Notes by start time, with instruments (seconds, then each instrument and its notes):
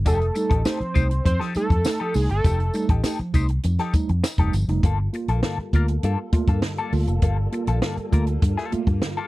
0.06 fingered electric bass F1, tine electric piano F3, clean electric guitar D#4 G4 A4, analog synth lead A4, kick, closed hi-hat, tambourine
0.20 tine electric piano A3 D#4, muted clean electric guitar stroke, closed hi-hat
0.35 tine electric piano G3 A3 D#4, muted clean electric guitar stroke, closed hi-hat, tambourine
0.50 fingered electric bass A1, clean electric guitar D#4 G4 A4, kick, closed hi-hat
0.65 tine electric piano A3 D#4, clean electric guitar D#4 G4 A4, analog synth lead C5, snare, tambourine
0.80 tine electric piano F3, muted clean electric guitar stroke, muted fingered electric bass stroke, closed hi-hat
0.94 fingered electric bass C2, tine electric piano A3 D#4, clean electric guitar D#4 G4 C5, kick, closed hi-hat, tambourine
1.10 muted clean electric guitar stroke, closed hi-hat
1.24 fingered electric bass F2, tine electric piano A3 D#4, analog synth lead C5, muted clean electric guitar stroke, kick, closed hi-hat
1.40 tine electric piano F3, clean electric guitar D#4 G4 A4, snare, closed hi-hat
1.55 tine electric piano G3 A3 D#4, analog synth lead A4, muted fingered electric bass stroke, closed hi-hat, tambourine
1.70 fingered electric bass F2, muted clean electric guitar stroke, kick, closed hi-hat
1.85 tine electric piano A3 D#4, muted clean electric guitar stroke, snare, tambourine
2.00 tine electric piano F3, clean electric guitar D#4 G4 A4
2.14 fingered electric bass C2, tine electric piano A3 D#4, analog synth lead G#4, open hi-hat, tambourine
2.30 fingered electric bass G1, analog synth lead A4, muted clean electric guitar stroke, closed hi-hat
2.44 fingered electric bass F1, tine electric piano F3, clean electric guitar D#4 G4 A4, kick, closed hi-hat, tambourine
2.59 tine electric piano A3 D#4, muted clean electric guitar stroke, closed hi-hat
2.74 tine electric piano G3 A3 D#4, muted clean electric guitar stroke, closed hi-hat, tambourine
2.89 fingered electric bass A1, clean electric guitar D#4 G4 A4, kick, closed hi-hat
3.04 tine electric piano A3 D#4, clean electric guitar D#4 G4 A4, snare, tambourine
3.19 tine electric piano F3, muted fingered electric bass stroke, muted clean electric guitar stroke, closed hi-hat
3.33 fingered electric bass C2, tine electric piano A3 D#4, clean electric guitar D#4 G4 C5, kick, closed hi-hat, tambourine
3.48 muted clean electric guitar stroke, closed hi-hat
3.63 fingered electric bass F2, tine electric piano A3 D#4, muted clean electric guitar stroke, closed hi-hat, tambourine
3.79 tine electric piano F3, clean electric guitar D#4 G4 A4, snare, closed hi-hat
3.93 tine electric piano G3 A3 D#4, muted fingered electric bass stroke, muted clean electric guitar stroke, kick, closed hi-hat, tambourine
4.09 fingered electric bass F2, muted clean electric guitar stroke, closed hi-hat
4.24 muted clean electric guitar stroke, snare, tambourine
4.38 fingered electric bass F1, tine electric piano G3 A3 D#4, clean electric guitar D#4 G4 A4, kick, closed hi-hat
4.53 fingered electric bass G1, tine electric piano F3, muted clean electric guitar stroke, closed hi-hat, tambourine
4.68 fingered electric bass F1, tine electric piano G3 A3 D#4, muted clean electric guitar stroke, closed hi-hat
4.83 fingered electric bass G1, tine electric piano G2 D3, string machine G3 A#3 F4 A4, clean electric guitar A#3 F4 A4, kick, closed hi-hat
5.00 muted clean electric guitar stroke
5.13 tine electric piano A#3 F4, muted clean electric guitar stroke, closed hi-hat
5.28 fingered electric bass A#1, clean electric guitar A#3 F4 A4, closed hi-hat
5.43 tine electric piano G2 D3, clean electric guitar A#3 F4 A4, snare
5.58 muted fingered electric bass stroke, muted clean electric guitar stroke
5.73 fingered electric bass D2, tine electric piano A3 A#3 F4, clean electric guitar A#3 F4 A#4, kick, closed hi-hat
5.88 tine electric piano A#3 F4, muted clean electric guitar stroke, closed hi-hat
6.03 fingered electric bass G2, clean electric guitar A#3 F4 A4, closed hi-hat
6.32 tine electric piano A3 A#3 F4, muted fingered electric bass stroke, muted clean electric guitar stroke, kick, closed hi-hat
6.48 fingered electric bass G2, clean electric guitar A#3 F4 A4, kick, closed hi-hat
6.62 tine electric piano G2 D3, snare
6.77 clean electric guitar A#3 F4 A4, closed hi-hat
6.92 fingered electric bass D2, tine electric piano A3 A#3 F4, muted clean electric guitar stroke, open hi-hat
7.07 fingered electric bass F1, tine electric piano A#3 F4, muted clean electric guitar stroke, closed hi-hat
7.22 fingered electric bass G1, tine electric piano G2 D3, clean electric guitar A#3 F4 A4, kick, closed hi-hat
7.38 muted clean electric guitar stroke
7.52 tine electric piano A#3 F4, muted clean electric guitar stroke, closed hi-hat
7.67 fingered electric bass A#1, clean electric guitar A#3 F4 A4, closed hi-hat
7.82 tine electric piano G2 D3, clean electric guitar A#3 F4 A4, snare
7.97 muted fingered electric bass stroke, muted clean electric guitar stroke, closed hi-hat
8.12 fingered electric bass D2, tine electric piano A3 A#3 F4, clean electric guitar A#3 F4 A#4, kick, closed hi-hat
8.27 tine electric piano A#3 F4, closed hi-hat
8.42 fingered electric bass G2, muted clean electric guitar stroke, kick, closed hi-hat
8.57 clean electric guitar A#3 F4 A4, snare
8.72 tine electric piano A3 A#3 F4, muted clean electric guitar stroke, muted fingered electric bass stroke, closed hi-hat
8.87 fingered electric bass G2, muted clean electric guitar stroke, kick, closed hi-hat
9.02 tine electric piano G2 D3, muted clean electric guitar stroke, snare
9.17 clean electric guitar A#3 F4 A4